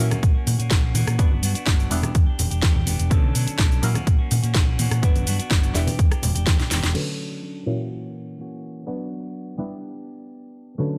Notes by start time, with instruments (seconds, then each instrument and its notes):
0.00 clean electric guitar E3 A#3 C#4 F#4, clav F#3 A#3 C#4 E4 A#4
0.10 clean electric guitar A#3 C#4 F#4, cross-stick, closed hi-hat, high conga, low conga, cabasa, shaker
0.23 fingered electric bass A#1, kick, closed hi-hat, cabasa, shaker
0.34 clean electric guitar A#3 C#4 F#4
0.46 fingered electric bass A#2, open hi-hat, high conga, low conga, cabasa, shaker
0.58 fingered electric bass A#2, clean electric guitar A#3 C#4 F#4, closed hi-hat, cabasa, shaker
0.70 fingered electric bass A#1, clean electric guitar E3 A#3 C#4 F#4, kick, cross-stick, snare, closed hi-hat, cabasa
0.82 clean electric guitar A#3 C#4 F#4
0.94 fingered electric bass A#2, clean electric guitar E3 A#3 C#4 F#4, open hi-hat, high conga, cabasa, shaker
1.07 fingered electric bass A#2, cross-stick, closed hi-hat, cabasa, shaker
1.18 fingered electric bass G1, clean electric guitar F#3 B3 D4 F#4, clav B3 D4 F#4 B4, kick, closed hi-hat, cabasa
1.31 clean electric guitar B3 D4 F#4, high conga
1.42 fingered electric bass G2, clean electric guitar F#3 B3 D4 F#4, open hi-hat, cabasa, shaker
1.55 clean electric guitar B3 D4 F#4, muted fingered electric bass stroke, closed hi-hat, cabasa, shaker
1.66 fingered electric bass G1, clean electric guitar F#3 B3 D4 F#4, kick, snare, closed hi-hat, high conga, cabasa, shaker
1.80 cabasa
1.90 fingered electric bass E1, clav G3 B3 D4 E4 B4, clean electric guitar B3 D4 G4, open hi-hat, cabasa, shaker
2.02 clean electric guitar D4 G4, cross-stick, closed hi-hat, high conga, low conga, cabasa, shaker
2.15 fingered electric bass E2, kick, closed hi-hat, cabasa, shaker
2.26 clean electric guitar D4 G4
2.39 fingered electric bass E1, open hi-hat, high conga, low conga, cabasa, shaker
2.50 fingered electric bass E1, clean electric guitar D4 G4, closed hi-hat, cabasa, shaker
2.62 fingered electric bass E2, clean electric guitar B3 D4 G4, kick, snare, closed hi-hat, cabasa
2.74 clean electric guitar D4 G4, low conga
2.86 fingered electric bass E1, clean electric guitar B3 D4 G4, open hi-hat, high conga, cabasa, shaker
2.99 fingered electric bass E1, closed hi-hat, cabasa, shaker
3.10 fingered electric bass B1, clav D3 F#3 B3 A4 C#5, clean electric guitar F#3 C#4 D4 A4, kick, closed hi-hat, cabasa
3.24 high conga
3.34 fingered electric bass B2, clean electric guitar F#3 C#4 D4 A4, open hi-hat, cabasa, shaker
3.46 clean electric guitar C#4 D4 A4, muted fingered electric bass stroke, closed hi-hat, cabasa, shaker
3.58 fingered electric bass B1, clean electric guitar F#3 C#4 D4 A4, kick, snare, closed hi-hat, high conga, cabasa, shaker
3.72 cabasa
3.82 fingered electric bass A#2, clean electric guitar E3 A#3 C#4 F#4, clav F#3 A#3 C#4 E4 A#4, open hi-hat, cabasa, shaker
3.94 clean electric guitar A#3 C#4 F#4, cross-stick, closed hi-hat, high conga, low conga, cabasa, shaker
4.07 fingered electric bass A#1, kick, closed hi-hat, cabasa
4.19 clean electric guitar A#3 C#4 F#4
4.30 fingered electric bass A#2, open hi-hat, high conga, low conga, cabasa, shaker
4.43 fingered electric bass A#2, clean electric guitar A#3 C#4 F#4, closed hi-hat, cabasa, shaker
4.54 fingered electric bass A#1, clean electric guitar E3 A#3 C#4 F#4, kick, cross-stick, snare, closed hi-hat, cabasa
4.67 clean electric guitar A#3 C#4 F#4
4.78 fingered electric bass A#2, clean electric guitar E3 A#3 C#4 F#4, open hi-hat, high conga, cabasa, shaker
4.91 fingered electric bass A#2, cross-stick, closed hi-hat, cabasa, shaker
5.02 fingered electric bass G1, clean electric guitar F#3 B3 D4 F#4, clav B3 D4 F#4 B4, kick, closed hi-hat, cabasa
5.16 closed hi-hat, high conga, cabasa
5.26 fingered electric bass G2, clean electric guitar F#3 B3 D4 F#4, open hi-hat, cabasa, shaker
5.39 clean electric guitar B3 D4 F#4, muted fingered electric bass stroke, closed hi-hat, cabasa, shaker
5.50 fingered electric bass G1, clean electric guitar F#3 B3 D4 F#4, kick, snare, closed hi-hat, high conga, cabasa, shaker
5.63 closed hi-hat, cabasa
5.74 fingered electric bass E1, clav G3 B3 D4 E4 B4, clean electric guitar B3 D4 G4, snare, open hi-hat, cabasa, shaker
5.87 clean electric guitar D4 G4, open hi-hat, high conga, low conga, cabasa, shaker
5.99 fingered electric bass E2, kick, closed hi-hat, cabasa, shaker
6.11 clean electric guitar D4 G4, cross-stick, closed hi-hat, cabasa
6.22 fingered electric bass E1, open hi-hat, high conga, low conga, cabasa, shaker
6.35 fingered electric bass E1, clean electric guitar D4 G4, closed hi-hat, cabasa, shaker
6.46 fingered electric bass E2, clean electric guitar B3 D4 G4, kick, snare, closed hi-hat, cabasa
6.59 clean electric guitar D4 G4, snare, closed hi-hat, low conga, cabasa
6.70 fingered electric bass E1, clean electric guitar B3 D4 G4, snare, open hi-hat, high conga, cabasa, shaker
6.83 fingered electric bass E1, snare, closed hi-hat, cabasa, shaker
6.94 clav D3 A3 F#4 B4 C#5, clean electric guitar F#3 C#4 D4, crash
7.42 clean electric guitar F#3 C#4 D4 A4
7.66 clav A#2 F#3 A#3 C#4 E4 A#4, clean electric guitar E3 A#3 C#4 F#4
8.38 clean electric guitar E3 A#3 C#4 F#4
8.86 clean electric guitar F#3 B3 D4 F#4, clav B3 D4 F#4 B4
9.58 clav G3 B3 D4 E4 B4, clean electric guitar D4 G4
9.62 clean electric guitar B3
10.78 clav D3 A3 F#4 B4 C#5, clean electric guitar F#3 C#4 D4 A4